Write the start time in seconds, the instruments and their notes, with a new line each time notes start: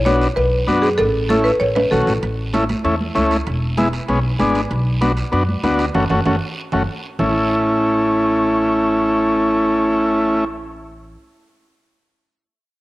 Already playing: upright bass B1
0.05 transistor combo organ B3 D4 F#4, marimba C#5, high conga, short guiro
0.22 short guiro
0.36 upright bass B1, marimba B4, cowbell, high conga, long guiro
0.67 upright bass F#2, transistor combo organ B3 D4 F#4, high conga, short guiro
0.82 marimba G#4, short guiro
0.98 upright bass A1, marimba A4, cowbell, high conga, long guiro
1.29 transistor combo organ A3 C#4 E4, marimba A4, high conga, short guiro
1.44 marimba B4, short guiro
1.60 upright bass A1, marimba C#5, cowbell, high conga, long guiro
1.75 marimba B4, high conga, high timbale
1.91 upright bass B1, transistor combo organ A3 C#4 F#4, marimba A4, high conga, low conga, short guiro
2.07 upright bass A1, low timbale, short guiro
2.23 upright bass A1, high conga, high timbale, long guiro
2.53 transistor combo organ A3 C#4 E4, high conga, high timbale, short guiro
2.69 high conga, high timbale, short guiro
2.84 upright bass E2, transistor combo organ A3 C#4 E4, high timbale, long guiro
3.01 high conga
3.15 upright bass C#2, transistor combo organ A3 C#4 E4, high conga, high timbale, short guiro
3.31 high timbale, short guiro
3.47 upright bass E1, high conga, high timbale, long guiro
3.77 transistor combo organ G#3 B3 E4, high conga, high timbale, short guiro
3.93 high timbale, short guiro
4.08 upright bass B1, transistor combo organ G#3 B3 C#4, high conga, high timbale, long guiro
4.39 upright bass G#1, transistor combo organ G#3 B3 D4, high conga, high timbale, low timbale, short guiro
4.55 high timbale, short guiro
4.71 upright bass B1, high conga, high timbale, long guiro
5.01 transistor combo organ B3 D4 F#4, high conga, high timbale, short guiro
5.17 high timbale, short guiro
5.32 upright bass F#2, transistor combo organ B3 D4 F#4, high conga, high timbale, long guiro
5.49 high conga
5.63 upright bass D2, transistor combo organ B3 D4 F#4, high conga, high timbale, low timbale, short guiro
5.79 high timbale, short guiro
5.94 upright bass F#1, transistor combo organ A3 C#4 F#4, low conga, high timbale, long guiro
6.10 upright bass F#1, transistor combo organ A3 C#4 F#4, low conga, high timbale, long guiro
6.25 upright bass F#1, transistor combo organ A3 C#4 F#4, low conga, high timbale, long guiro
6.72 upright bass F#1, transistor combo organ A3 C#4 F#4, low conga, high timbale, long guiro
7.19 upright bass A1, transistor combo organ A3 C#4 E4, low conga, low timbale, long guiro